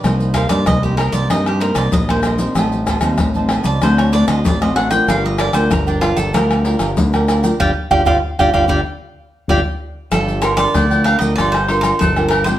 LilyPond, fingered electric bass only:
\new Staff \with { instrumentName = "Fingered electric bass" } { \clef bass \time 4/4 \key g \minor \tempo 4 = 95 c,8. g,16 c,8. c,16 g,8. c,16 bes,,4 | a,,8. ees,16 a,,8. cis,16 d,8. d,16 a,,4 | g,,8. d,16 g,,8. g,,16 d,8. g,,16 d,4 | g,,16 r16 g,,16 g,,16 r16 g,,16 g,,16 g,,16 r4 g,,16 r8. |
g,,4 d,8. d,16 g,,4 g,,4 | }